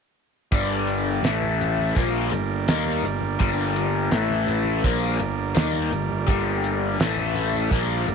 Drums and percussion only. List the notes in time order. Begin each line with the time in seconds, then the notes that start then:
0.52 kick, closed hi-hat
0.87 closed hi-hat
1.24 snare, closed hi-hat
1.42 high conga
1.61 closed hi-hat, low conga
1.78 high conga
1.96 kick, closed hi-hat
2.32 closed hi-hat, high conga
2.68 snare, closed hi-hat
2.86 high conga
3.03 closed hi-hat, low conga
3.21 high conga
3.40 kick, closed hi-hat
3.76 closed hi-hat
4.11 snare, closed hi-hat
4.29 high conga
4.47 closed hi-hat, low conga
4.64 high conga
4.84 kick, closed hi-hat
5.20 closed hi-hat, high conga
5.56 snare, closed hi-hat
5.73 high conga
5.92 closed hi-hat, low conga
6.09 high conga
6.28 kick, closed hi-hat
6.64 closed hi-hat
7.00 snare, closed hi-hat
7.17 high conga
7.34 closed hi-hat, low conga
7.53 high conga
7.71 kick, closed hi-hat
8.07 closed hi-hat, high conga